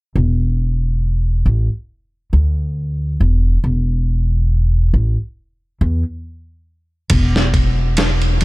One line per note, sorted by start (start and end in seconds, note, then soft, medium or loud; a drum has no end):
0.15 1.42 E1 medium
1.46 1.67 A1 medium
2.33 3.16 D2 medium
3.20 3.59 E1 medium
3.64 4.90 E1 medium
4.94 5.15 A1 medium
5.81 6.02 E2 medium
7.10 8.37 E1 medium
7.10 kick loud
7.10 ride medium
7.36 snare soft
7.54 kick medium
7.54 ride medium
7.97 snare medium
7.97 ride medium
8.22 ride soft
8.41 ride medium